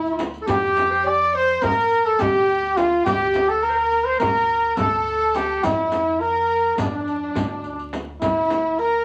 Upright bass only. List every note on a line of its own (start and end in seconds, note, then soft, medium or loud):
0.00 0.45 D2 medium
0.48 1.59 F2 loud
1.63 2.18 F2 medium
2.21 3.02 D2 medium
3.06 4.17 D2 loud
4.21 4.75 D2 medium
4.78 5.60 D2 medium
5.64 6.75 F2 loud
6.78 7.33 F2 medium
7.35 8.18 D2 medium
8.22 9.05 D2 medium